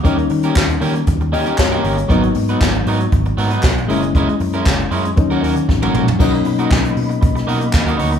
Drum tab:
CC |----------------|----------------|----------------|x---------------|
HH |xxox-xoxxxox-xox|xxox-xoxxxox-xox|xxox-xoxxxox----|-xox-xoxxxox-xox|
CP |----x-------x---|----x-------x---|----x-----------|----x-------x---|
SD |----o-------o---|----o-------o---|----o-------o---|----o----o--o---|
T1 |----------------|----------------|-------------o--|----------------|
T2 |----------------|----------------|--------------o-|----------------|
FT |----------------|----------------|---------------o|----------------|
BD |o---o---o---o---|o---o---o---o---|o---o---o---o---|o---o---o---o---|